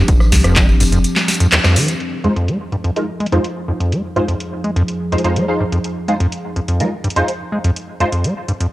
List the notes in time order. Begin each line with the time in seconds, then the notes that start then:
Already playing: F3 C4 D4 G4
0.08 F1, kick, closed hi-hat, tambourine
0.20 cross-stick, tambourine
0.32 C2 F2, snare, open hi-hat, tambourine
0.44 F1 F2, cross-stick, closed hi-hat, tambourine
0.56 G#3, kick, clap, closed hi-hat, tambourine
0.69 tambourine
0.80 F1 G2, open hi-hat, tambourine
0.92 F2, closed hi-hat, tambourine
1.04 closed hi-hat, tambourine
1.16 snare, clap, tambourine
1.28 snare, open hi-hat, tambourine
1.34 closed hi-hat
1.40 F2, closed hi-hat, tambourine
1.52 D#2, cross-stick, clap, closed hi-hat, tambourine
1.64 F2, cross-stick, snare, tambourine
1.76 D#3, open hi-hat, tambourine
1.88 F3, closed hi-hat, tambourine
2.00 F2 F3 D#4 G#4, closed hi-hat
2.24 F2 G#3 D#4 F4 C5, closed hi-hat
2.36 F2, closed hi-hat
2.48 G#3, closed hi-hat
2.72 G2, closed hi-hat
2.84 F2, closed hi-hat
2.96 G#3 D#4 F4 A#4, closed hi-hat
3.20 G#3, closed hi-hat
3.26 closed hi-hat
3.32 F2 G#3 D#4 F4 C5, closed hi-hat
3.44 closed hi-hat
3.68 F2
3.80 F2, closed hi-hat
3.92 G#3, closed hi-hat
4.16 G2 G#3 D#4 F4 C5, closed hi-hat
4.28 F2, closed hi-hat
4.40 closed hi-hat
4.64 G#3, closed hi-hat
4.76 F2, closed hi-hat
4.88 closed hi-hat
5.12 F2 G#3 D#4 F4 C5, closed hi-hat
5.18 closed hi-hat
5.24 F2 G#3 D#4 F4 C5, closed hi-hat
5.36 G#3, closed hi-hat
5.48 G#3 D#4 F4 C5
5.60 G2
5.72 F2, closed hi-hat
5.84 closed hi-hat
6.08 G#3 D#4 F4 C5, closed hi-hat
6.20 F2, closed hi-hat
6.32 closed hi-hat
6.56 F2, closed hi-hat
6.68 F2, closed hi-hat
6.80 G#3 D#4 F4 A#4, closed hi-hat
7.04 G2, closed hi-hat
7.10 closed hi-hat
7.16 F2 G#3 D#4 F4 C5, closed hi-hat
7.28 closed hi-hat
7.52 G#3
7.64 F2, closed hi-hat
7.76 closed hi-hat
8.00 F2 G#3 D#4 F4 C5, closed hi-hat
8.12 F2, closed hi-hat
8.24 G#3, closed hi-hat
8.48 G2, closed hi-hat
8.60 F2, closed hi-hat